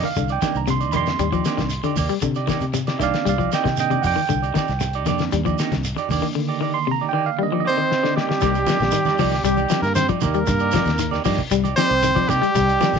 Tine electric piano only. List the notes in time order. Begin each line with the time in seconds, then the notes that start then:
Already playing: D#3 A#3 D4
0.05 F5
0.32 G5
0.42 D#3 A#3 D4
0.57 A#5
0.70 C6
0.92 B5
0.97 C6
1.45 D#3 A#3 D4
2.99 D#3 A#3 D4 D5 E5
3.03 F5
3.29 D5 F5
3.54 D#5 G5
3.78 D#3 A#3 D4 D#5 G5
4.02 F#5
4.07 G5
5.07 D#3 A#3 D4
6.11 D#3 A#3 D4
6.37 D3 D#3 A#3
6.74 C6
6.91 A#5
7.09 G5
7.26 F5
7.40 D#3 A#3 D4 D#5
7.60 D#5